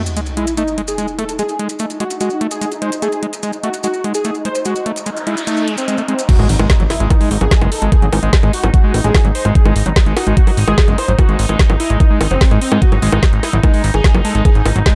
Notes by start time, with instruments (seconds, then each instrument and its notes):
Already playing: synth texture D#4, sub drop
0.06 closed hi-hat, maracas
0.17 acid bass G#3, closed hi-hat, maracas
0.26 closed hi-hat, maracas
0.37 acid bass G#3, analog synth lead E4, closed hi-hat
0.47 closed hi-hat, maracas
0.57 acid bass A3, analog synth lead D#4, closed hi-hat, maracas
0.68 maracas
0.78 acid bass G#3, closed hi-hat
0.88 analog synth lead G#4, closed hi-hat, maracas
0.98 acid bass G#3, closed hi-hat, maracas
1.08 maracas
1.19 acid bass A3, analog synth lead A4, closed hi-hat
1.29 closed hi-hat, maracas
1.39 acid bass G#3, analog synth lead G#4, closed hi-hat, maracas
1.49 closed hi-hat, maracas
1.59 acid bass G#3, closed hi-hat
1.69 closed hi-hat, maracas
1.79 acid bass A3, closed hi-hat, maracas
1.90 closed hi-hat, maracas
2.00 acid bass G#3, analog synth lead F#4, closed hi-hat
2.10 closed hi-hat, maracas
2.21 acid bass G#3, analog synth lead F#4, closed hi-hat, maracas
2.30 maracas
2.41 acid bass A3, closed hi-hat
2.51 analog synth lead G#4, closed hi-hat, maracas
2.61 acid bass G#3, closed hi-hat, maracas
2.72 closed hi-hat, maracas
2.82 acid bass G#3, analog synth lead C5, closed hi-hat
2.92 closed hi-hat, maracas
3.02 acid bass A3, analog synth lead G#4, closed hi-hat, maracas
3.12 closed hi-hat, maracas
3.23 acid bass G#3, closed hi-hat
3.33 closed hi-hat, maracas
3.43 acid bass G#3, closed hi-hat, maracas
3.53 closed hi-hat, maracas
3.63 acid bass A3, analog synth lead F#4, closed hi-hat
3.74 closed hi-hat, maracas
3.83 acid bass G#3, analog synth lead F#4, closed hi-hat, maracas
3.94 maracas
4.04 acid bass G#3, closed hi-hat
4.14 analog synth lead G#4, closed hi-hat, maracas
4.25 acid bass A3, closed hi-hat, maracas
4.35 maracas
4.45 acid bass G#3, analog synth lead C5, closed hi-hat
4.55 closed hi-hat, maracas
4.65 acid bass G#3, analog synth lead F#4, closed hi-hat, noise sweep, maracas
4.76 closed hi-hat, maracas
4.86 acid bass A3, closed hi-hat
4.96 closed hi-hat, maracas
5.06 acid bass G#3, closed hi-hat, maracas
5.17 closed hi-hat, maracas
5.27 acid bass G#3, analog synth lead E4, closed hi-hat
5.37 closed hi-hat, maracas
5.47 acid bass A3, analog synth lead D#4, closed hi-hat, maracas
5.57 maracas
5.68 acid bass G#3, closed hi-hat
5.77 analog synth lead C4, closed hi-hat, maracas
5.88 acid bass G#3, closed hi-hat, maracas
5.98 acid bass A3, closed hi-hat, maracas
6.08 acid bass G#3, analog synth lead C4, closed hi-hat
6.19 closed hi-hat, maracas
6.29 synth texture D#4, analog synth lead F#4, kick, closed hi-hat, crash, impact
6.39 analog synth bass G#1, acid bass G#3, closed hi-hat, high bongo
6.49 analog synth bass G#1, open hi-hat
6.59 analog synth bass G#1, acid bass G#3, closed hi-hat, high bongo
6.70 kick, snare, closed hi-hat
6.80 analog synth bass G#1, acid bass F#3, closed hi-hat
6.90 analog synth lead E4, snare, open hi-hat, high bongo
7.00 analog synth bass G#1, acid bass G#3, closed hi-hat
7.10 analog synth lead D#4, kick, closed hi-hat, high bongo
7.21 acid bass G#3, open hi-hat
7.31 analog synth bass G#1, open hi-hat
7.41 analog synth bass G#1, acid bass F#3, analog synth lead G#4, closed hi-hat, high bongo
7.51 kick, snare, closed hi-hat
7.61 analog synth bass F#1, acid bass G#3, closed hi-hat, high bongo
7.72 analog synth lead A4, open hi-hat
7.82 analog synth bass G#1, acid bass G#3, closed hi-hat
7.92 analog synth lead G#4, kick, closed hi-hat, high bongo
8.02 analog synth bass G#1, acid bass F#3, closed hi-hat
8.12 analog synth bass G#1, open hi-hat, high bongo
8.23 analog synth bass G#1, acid bass G#3, closed hi-hat
8.33 kick, snare, closed hi-hat
8.43 analog synth bass G#1, acid bass G#3, closed hi-hat, high bongo
8.53 analog synth lead F#4, open hi-hat
8.63 analog synth bass G#1, acid bass F#3, closed hi-hat, high bongo
8.74 analog synth lead F#4, kick, closed hi-hat
8.84 acid bass G#3
8.94 analog synth bass A1, open hi-hat, high bongo
9.04 analog synth bass A1, acid bass G#3, analog synth lead G#4, closed hi-hat
9.15 kick, snare, open hi-hat, high bongo
9.25 analog synth bass G#1, acid bass F#3, closed hi-hat
9.35 analog synth lead C5, open hi-hat
9.45 analog synth bass G#1, acid bass G#3, closed hi-hat, high bongo
9.55 analog synth lead G#4, kick, closed hi-hat
9.66 analog synth bass G#1, acid bass G#3, closed hi-hat, high bongo
9.76 analog synth bass G#1, open hi-hat
9.86 analog synth bass G#1, acid bass F#3, closed hi-hat
9.96 kick, snare, closed hi-hat, high bongo
10.06 analog synth bass G#1, acid bass G#3, closed hi-hat
10.17 analog synth lead F#4, snare, open hi-hat, high bongo
10.27 analog synth bass G#1, acid bass G#3, closed hi-hat
10.37 analog synth lead F#4, kick, closed hi-hat
10.47 acid bass F#3, open hi-hat, high bongo
10.57 analog synth bass G#1, open hi-hat
10.68 analog synth bass G#1, acid bass G#3, analog synth lead G#4, high bongo
10.78 kick, snare, closed hi-hat
10.88 analog synth bass F#1, acid bass G#3, closed hi-hat
10.98 analog synth lead C5, open hi-hat, high bongo
11.08 analog synth bass G#1, acid bass F#3, closed hi-hat
11.19 analog synth lead F#4, kick, closed hi-hat, high bongo
11.29 analog synth bass G#1, acid bass G#3, closed hi-hat
11.39 analog synth bass G#1, open hi-hat
11.49 analog synth bass G#1, acid bass G#3, closed hi-hat, high bongo
11.59 kick, snare, closed hi-hat
11.70 analog synth bass G#1, acid bass F#3, closed hi-hat, high bongo
11.80 analog synth lead E4, open hi-hat
11.90 analog synth bass G#1, acid bass G#3, closed hi-hat
12.00 analog synth lead D#4, kick, closed hi-hat, high bongo
12.10 acid bass G#3
12.21 analog synth bass G#1, open hi-hat, high bongo
12.31 analog synth bass F#1, acid bass F#3, analog synth lead C4, closed hi-hat
12.41 kick, snare, open hi-hat
12.51 analog synth bass G#2, acid bass G#3, closed hi-hat, high bongo
12.61 analog synth lead C4, open hi-hat
12.72 analog synth bass G#2, acid bass G#3, high bongo
12.82 analog synth lead F#4, kick, closed hi-hat
12.92 analog synth bass G#1, acid bass F#3, closed hi-hat, high bongo
13.02 analog synth bass G#1, acid bass G#3, open hi-hat
13.12 analog synth bass G#1, acid bass G#3, closed hi-hat, high bongo
13.23 kick, snare, closed hi-hat
13.33 analog synth bass G#1, closed hi-hat
13.43 analog synth lead E4, snare, open hi-hat, high bongo
13.53 analog synth bass G#1, acid bass F#3, closed hi-hat
13.63 acid bass G#3, analog synth lead D#4, kick, closed hi-hat, high bongo
13.74 acid bass G#3, open hi-hat
13.84 analog synth bass G#1, open hi-hat
13.94 analog synth bass G#1, analog synth lead G#4, closed hi-hat, high bongo
14.04 kick, snare, closed hi-hat
14.14 analog synth bass F#1, acid bass F#3, closed hi-hat, high bongo
14.25 acid bass G#3, analog synth lead A4, open hi-hat
14.35 analog synth bass G#1, acid bass G#3, closed hi-hat
14.45 analog synth lead G#4, kick, closed hi-hat, high bongo
14.55 analog synth bass G#1, closed hi-hat
14.66 analog synth bass G#1, open hi-hat, high bongo
14.76 analog synth bass G#1, acid bass F#3, closed hi-hat
14.86 acid bass G#3, kick, snare, closed hi-hat